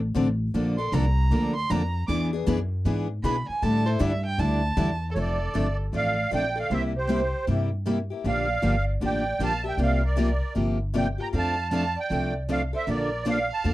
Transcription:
Already playing: upright bass A1
0.15 upright bass A1, steel-string acoustic guitar D3 F3 C4 D4 A4
0.54 upright bass A#1, steel-string acoustic guitar D3 F3 A#3 D4 A4
0.78 steel-string acoustic guitar A#3 D4 A4, violin C6
0.92 upright bass C2, steel-string acoustic guitar D3 F3 A#3 D4 A4, violin A#5
1.30 upright bass D2, steel-string acoustic guitar D3 F3 A#3 D4 A4
1.56 violin C6
1.70 upright bass F2, steel-string acoustic guitar D3 F3 A#3 D4 A4, violin A#5
2.07 upright bass E2, steel-string acoustic guitar E3 B3 D4 G#4 B4, violin D6
2.33 steel-string acoustic guitar B3 D4 G#4
2.46 upright bass F#2, steel-string acoustic guitar E3 B3 D4 G#4 B4
2.85 upright bass G#2, steel-string acoustic guitar E3 B3 D4 G#4 B4
3.23 upright bass B2, steel-string acoustic guitar E3 B3 D4 G#4 B4, violin B5
3.48 violin G#5, muted upright bass stroke
3.62 upright bass A2, steel-string acoustic guitar D3 G3 D4 E4 A4, violin A5
3.86 steel-string acoustic guitar D4 E4 A4, violin C5
3.99 upright bass G2, steel-string acoustic guitar D3 G3 D4 E4 A4, violin E5
4.26 violin G5
4.38 upright bass D2, steel-string acoustic guitar D3 G3 D4 E4 A4, violin A5
4.77 upright bass E2, steel-string acoustic guitar D3 G3 D4 E4 A4
5.11 violin A4, accordion C#5
5.16 upright bass F1, steel-string acoustic guitar F3 A3 C4 D4 A4, violin A4
5.21 accordion D5
5.54 upright bass G1, steel-string acoustic guitar F3 A3 C4 D4 A4
5.93 upright bass A1, steel-string acoustic guitar F3 A3 C4 D4 A4, violin D5, accordion F5
6.31 upright bass A#1, steel-string acoustic guitar F3 A3 C4 D4 A4, violin D5, accordion G5
6.56 steel-string acoustic guitar A3 D4 A4, violin D5
6.60 accordion F5
6.70 upright bass C2, steel-string acoustic guitar C3 G3 A#3 E4 G4, violin C5, accordion E5
6.96 violin G4, accordion C5
7.09 steel-string acoustic guitar C3 G3 A#3 E4 G4
7.47 upright bass G2, steel-string acoustic guitar C3 G3 A#3 E4 G4
7.86 steel-string acoustic guitar C3 G3 A#3 E4 G4
8.10 steel-string acoustic guitar A#3 E4 G4
8.24 upright bass A#1, steel-string acoustic guitar D3 F3 A#3 D4 G4, violin D5, accordion F5
8.63 upright bass G1, steel-string acoustic guitar D3 F3 A#3 D4 G4
9.01 upright bass A1, steel-string acoustic guitar D3 F3 A#3 D4 G4, violin D5
9.06 accordion G5
9.39 upright bass A#1, steel-string acoustic guitar D3 F3 A#3 D4 G4, violin F5
9.44 accordion A5
9.64 steel-string acoustic guitar A#3 D4 G4, violin E5
9.69 accordion G5
9.77 upright bass C2, steel-string acoustic guitar C3 F3 A#3 F4 G4, violin D5
9.83 accordion F5
10.04 violin A#4, accordion D5
10.16 steel-string acoustic guitar C3 F3 A#3 F4 G4
10.55 upright bass G1, steel-string acoustic guitar C3 F3 A#3 F4 G4
10.94 steel-string acoustic guitar C3 F3 A#3 F4 G4, violin D5, accordion G5
11.18 steel-string acoustic guitar A#3 F4 G4, violin G5
11.23 accordion A#5
11.33 upright bass F2, steel-string acoustic guitar F3 A3 C4 D4 A4, violin F5
11.38 accordion A5
11.71 steel-string acoustic guitar F3 A3 C4 D4 A4, violin F5
11.75 accordion A5
11.96 violin D5, accordion G5
12.10 upright bass C2, steel-string acoustic guitar F3 A3 C4 D4 A4
12.49 steel-string acoustic guitar F3 A3 C4 D4 A4, violin D5, accordion F5
12.73 steel-string acoustic guitar A3 D4 A4, violin C5, accordion E5
12.87 upright bass A#1, steel-string acoustic guitar D3 F3 A#3 D4 A4, violin A#4, accordion D5
13.26 steel-string acoustic guitar D3 F3 A#3 D4 A4, violin D5, accordion F5
13.50 violin F5, accordion A5
13.64 upright bass F2, steel-string acoustic guitar D3 F3 A#3 D4 A4

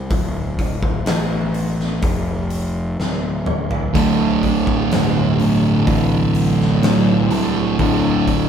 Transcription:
0.11 picked electric bass D1, kick, open hi-hat
0.59 kick, open hi-hat
0.83 kick
1.06 picked electric bass A1, snare, open hi-hat
1.54 open hi-hat
1.80 snare
2.02 picked electric bass F1, kick, open hi-hat
2.50 open hi-hat
2.99 picked electric bass D1, snare
3.46 mid tom
3.71 floor tom
3.95 picked electric bass D1, distorted electric guitar D2 A2 D3, synth drone D3 A3 E4, kick, open hi-hat, splash
4.43 kick, open hi-hat
4.67 kick
4.92 picked electric bass G1, snare, open hi-hat
5.39 distorted electric guitar D2 A2 D3, open hi-hat
5.87 picked electric bass A1, kick, open hi-hat
6.35 open hi-hat
6.61 snare
6.83 picked electric bass B1, distorted electric guitar D2 A2 D3, snare, open hi-hat
7.30 picked electric bass C2, distorted electric guitar D2 A2 D3, open hi-hat
7.79 picked electric bass D1, distorted electric guitar D2 A2, kick, open hi-hat
7.83 distorted electric guitar D3
8.28 kick, open hi-hat

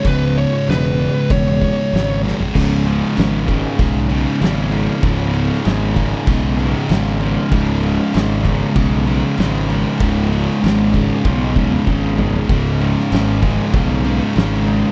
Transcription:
0.03 fingered electric bass C#1, distorted electric guitar C#2 G#2 C#3, kick, open hi-hat
0.07 lead electric guitar B4
0.37 lead electric guitar C#5
0.68 fingered electric bass E1, lead electric guitar B4, snare, open hi-hat
1.30 fingered electric bass E1, lead electric guitar C#5, kick, open hi-hat
1.60 distorted electric guitar G#2 C#3, kick
1.65 distorted electric guitar C#2
1.92 fingered electric bass G#1, distorted electric guitar C#2 G#2 C#3, snare, open hi-hat
2.24 distorted electric guitar C#2 G#2 C#3, snare
2.40 floor tom
2.54 fingered electric bass C#1, overdriven electric guitar C#2 G#2 C#3, kick, crash
2.85 overdriven electric guitar C#2 G#2 C#3, crash
3.05 snare
3.16 fingered electric bass G#1, overdriven electric guitar C#2 G#2 C#3, snare, crash
3.47 overdriven electric guitar C#2 G#2 C#3, kick, crash
3.51 distorted electric guitar C#2
3.78 fingered electric bass B1, overdriven electric guitar C#2 G#2 C#3, kick, crash
4.09 overdriven electric guitar C#2 G#2 C#3, crash
4.41 fingered electric bass G#1, overdriven electric guitar C#2 G#2 C#3, snare, crash
4.71 overdriven electric guitar C#2 G#2 C#3, crash
5.02 fingered electric bass C#1, overdriven electric guitar C#2 G#2 C#3, kick, crash
5.33 overdriven electric guitar C#2 G#2 C#3, crash
5.53 snare
5.64 fingered electric bass G#1, overdriven electric guitar C#2 G#2 C#3, snare, crash
5.96 overdriven electric guitar C#2 G#2 C#3, kick, crash
6.27 fingered electric bass B1, overdriven electric guitar C#2 G#2 C#3, kick, crash
6.57 overdriven electric guitar C#2 G#2 C#3, crash
6.88 fingered electric bass G#1, overdriven electric guitar C#2 G#2 C#3, snare, crash
7.20 overdriven electric guitar C#2 G#2 C#3, crash
7.51 fingered electric bass C#1, overdriven electric guitar C#2 G#2 C#3, kick, crash
7.82 overdriven electric guitar C#2 G#2 C#3, crash
8.13 fingered electric bass G#1, overdriven electric guitar C#2 G#2 C#3, snare, crash
8.43 overdriven electric guitar C#2 G#2 C#3, kick, crash
8.47 distorted electric guitar C#2
8.74 fingered electric bass B1, overdriven electric guitar C#2 G#2 C#3, kick, crash
9.06 overdriven electric guitar C#2 G#2 C#3, crash
9.37 fingered electric bass G#1, overdriven electric guitar C#2 G#2 C#3, snare, crash
9.68 overdriven electric guitar C#2 G#2 C#3, crash
10.00 fingered electric bass C#1, overdriven electric guitar C#2 G#2 C#3, kick, crash
10.30 overdriven electric guitar C#2 G#2 C#3, crash
10.51 snare
10.61 fingered electric bass G#1, overdriven electric guitar C#2 G#2 C#3, crash
10.66 snare
10.93 overdriven electric guitar C#2 G#2 C#3, kick, crash
10.97 distorted electric guitar C#2
11.24 fingered electric bass B1, overdriven electric guitar C#2 G#2 C#3, kick
11.54 overdriven electric guitar C#2 G#2 C#3, kick
11.59 distorted electric guitar C#2
11.72 mid tom
11.86 fingered electric bass G#1, overdriven electric guitar C#2 G#2 C#3, kick
12.17 overdriven electric guitar C#2 G#2 C#3, floor tom
12.33 floor tom
12.48 fingered electric bass C#1, overdriven electric guitar C#2 G#2 C#3, kick, crash
12.80 overdriven electric guitar C#2 G#2 C#3, crash
13.00 snare
13.11 fingered electric bass G#1, overdriven electric guitar C#2 G#2 C#3, snare, crash
13.42 overdriven electric guitar C#2 G#2 C#3, kick, crash
13.73 fingered electric bass B1, overdriven electric guitar C#2 G#2 C#3, kick, crash
14.04 overdriven electric guitar C#2 G#2 C#3, crash
14.36 fingered electric bass G#1, overdriven electric guitar C#2 G#2 C#3, snare, crash
14.66 overdriven electric guitar C#2 G#2 C#3, crash

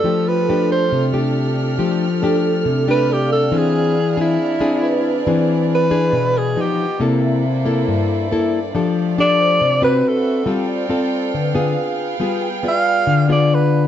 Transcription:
Already playing: alto saxophone A4
0.04 nylon-string guitar F3 A3 D4 G4, violin section D4 G4 A4 F6
0.27 vibraphone F4, alto saxophone B4
0.41 vibraphone A4
0.49 nylon-string guitar A3 D4 G4
0.72 alto saxophone C5
0.92 nylon-string guitar C3
1.13 nylon-string guitar A3 D4 G4
1.79 nylon-string guitar F3 A3 D4 G4
2.22 nylon-string guitar A3 D4 G4, vibraphone A4
2.65 nylon-string guitar C3
2.88 nylon-string guitar A3 D4 G4, alto saxophone B4
3.08 vibraphone D5
3.13 alto saxophone G4
3.24 vibraphone F5
3.31 alto saxophone A4, vibraphone D5
3.41 vibraphone G5
3.51 nylon-string guitar E3 C4 D4 G#4, violin section D4 E4 G#4 D5
3.57 alto saxophone G#4
4.17 nylon-string guitar C4 D4 G#4
4.21 alto saxophone E4
4.60 nylon-string guitar C4 D4 G#4
4.83 vibraphone B4
5.25 nylon-string guitar E3 C4 D4 G#4, vibraphone D5
5.75 alto saxophone B4
5.91 nylon-string guitar D4 G#4
6.13 nylon-string guitar B2
6.38 alto saxophone G#4
6.56 nylon-string guitar F3 B3 D#4, violin section B3 F4 G4 D#5
6.61 alto saxophone G4
7.00 nylon-string guitar C3 A#3 E4 A4, violin section A#3 E4 A4 C5 D5
7.22 vibraphone E5
7.65 nylon-string guitar A#3 E4 A4
7.88 nylon-string guitar G2
8.31 nylon-string guitar A#3 E4 A4
8.74 nylon-string guitar F3 D4 G4 A4, violin section A3 F4 G4
9.18 nylon-string guitar D4 G4 A4, alto saxophone D5
9.40 vibraphone C5
9.61 nylon-string guitar C3
9.82 nylon-string guitar C4 F#4 B4, alto saxophone B4
10.02 violin section C4 F#4 B4 E5
10.09 alto saxophone A4
10.46 nylon-string guitar G3 C4 F4 A4, violin section A4 F5 G5
10.68 vibraphone D5
10.89 nylon-string guitar C4 F4 A4
11.34 nylon-string guitar D3, vibraphone B4
11.55 nylon-string guitar B3 F4 G#4, vibraphone F5
11.75 violin section B3 G#4 G5
12.20 nylon-string guitar G3 B3 F4 G#4
12.63 nylon-string guitar B3 F4 G#4, vibraphone D5
12.68 alto saxophone F5
13.07 nylon-string guitar D3
13.29 nylon-string guitar B3 F4 G#4, alto saxophone D5
13.54 alto saxophone B4

